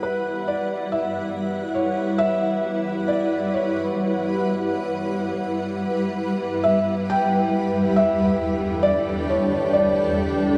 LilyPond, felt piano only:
\new Staff \with { instrumentName = "Felt piano" } { \time 4/4 \key e \dorian \tempo 4 = 68 b'8 d''8 e''4 cis''8 e''4 d''8 | cis''2 r4. e''8 | g''4 e''4 d''8 cis''8 d''4 | }